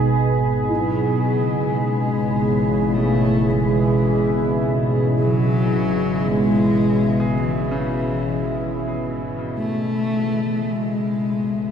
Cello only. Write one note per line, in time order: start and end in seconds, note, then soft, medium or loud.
0.00 0.15 G#3 medium
0.71 1.80 F#3 medium
1.78 2.96 G#3 medium
2.94 3.52 A3 medium
3.51 4.60 G#3 medium
5.20 6.30 F#3 loud
6.28 7.40 G#3 loud
7.38 9.04 E3 medium
9.58 10.73 A3 loud
10.72 11.71 G#3 loud